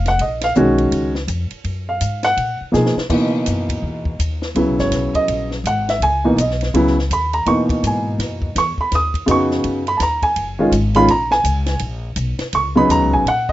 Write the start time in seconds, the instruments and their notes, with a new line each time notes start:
Already playing: upright bass F1
0.06 upright piano F#5, snare, ride
0.19 upright bass A#1, upright piano D#5, ride
0.41 upright piano F5, snare, ride
0.55 upright bass B1, upright piano D#3 G#3 C#4 F#4, hi-hat pedal
0.78 ride
0.92 upright bass C#2, ride
1.15 snare
1.27 upright bass F2, hi-hat pedal, ride
1.51 muted upright bass stroke, ride
1.64 upright bass F#2, ride
1.89 upright piano F5
2.01 upright bass G#2, hi-hat pedal, ride
2.23 upright piano F#5, snare, ride
2.37 upright bass A#2, ride
2.61 muted upright bass stroke
2.72 upright bass B2, upright piano F3 A#3 D#4 G#4, snare, hi-hat pedal
2.86 snare
2.96 muted upright bass stroke, snare
3.10 upright piano B2 E3 A#3 D#4, upright bass C#3, kick, crash
3.46 upright bass F#2, hi-hat pedal, ride
3.69 kick, ride
3.82 upright bass E2
4.05 kick
4.19 upright bass D#2, hi-hat pedal, ride
4.42 snare
4.55 upright bass C#2, upright piano C#3 F#3 B3 E4, ride
4.68 upright bass B1
4.79 upright bass G#1, upright piano C#5, snare
4.91 upright bass B1, snare, hi-hat pedal, ride
5.14 upright piano D#5, muted upright bass stroke, kick, ride
5.28 upright bass A#1, ride
5.51 snare
5.64 upright bass G#1, upright piano F#5, hi-hat pedal, ride
5.89 upright piano E5, snare, ride
6.00 upright bass C#2, upright piano G#5, ride
6.24 upright piano B2 E3 A#3 D#4
6.36 upright bass B1, hi-hat pedal, ride
6.41 upright piano D#5
6.50 snare
6.61 snare, ride
6.74 upright bass C#2, upright piano C#3 F#3 B3 E4, ride
6.87 snare
6.99 snare
7.10 upright bass D#2, upright piano B5, hi-hat pedal, ride
7.33 upright piano A#5, ride
7.46 upright bass E2, upright piano B2 E3 A#3 D#4 C#6, ride
7.69 muted upright bass stroke, kick, ride
7.83 upright bass G#2, hi-hat pedal, ride
7.87 upright piano G#5
8.18 upright bass F#2, snare, ride
8.42 kick
8.55 upright bass E2, upright piano C#6, snare, hi-hat pedal, ride
8.78 upright piano B5, muted upright bass stroke, kick
8.91 upright bass D#2, upright piano D#6, snare, ride
9.14 kick, ride
9.26 upright bass F2, upright piano C#3 B3 D#4 F#4, hi-hat pedal, ride
9.31 upright piano C#6
9.51 snare
9.64 upright bass F#2, ride
9.87 upright piano B5, ride
9.97 upright bass D#2, upright piano A5, snare, hi-hat pedal, ride
10.02 upright piano A#5
10.22 upright piano G#5, kick, ride
10.36 upright bass F#1, ride
10.59 upright piano D#3 G#3 C#4 F4
10.71 upright bass G#1, hi-hat pedal, ride
10.94 upright piano D#3 G#3 C#4 F4 B5, ride
11.08 upright bass A#1, upright piano A#5, ride
11.31 upright piano G#5, snare
11.44 upright bass C#2, hi-hat pedal, ride
11.66 snare, ride
11.79 upright bass A#1, ride
12.16 upright bass B1, hi-hat pedal, ride
12.39 muted upright bass stroke, snare, ride
12.53 upright bass C#2, upright piano C#6, ride
12.76 upright piano C#3 F#3 B3 D#4 B5
12.89 upright bass D#2, upright piano A#5, hi-hat pedal, ride
13.02 upright bass C#2
13.13 upright bass A#1, upright piano G#5
13.25 upright bass A#2, upright piano F#5, ride
13.49 upright piano D#5, kick